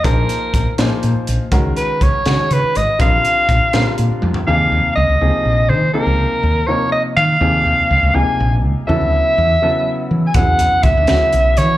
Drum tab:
HH |x-x-x-x-x-x-|x-x-x-x-x-x-|x-x-x-x-x---|------------|
SD |------o-----|------o-----|------o-----|------------|
T1 |------------|------------|----------o-|------------|
FT |------------|------------|-----------o|------------|
BD |o---o-------|o---o-------|o---o-------|------------|

HH |------------|------------|------------|x-x-x-x-x-x-|
SD |------------|------------|------------|------o-----|
T1 |------------|------------|------------|------------|
FT |------------|------------|------------|------------|
BD |------------|------------|------------|o---o-------|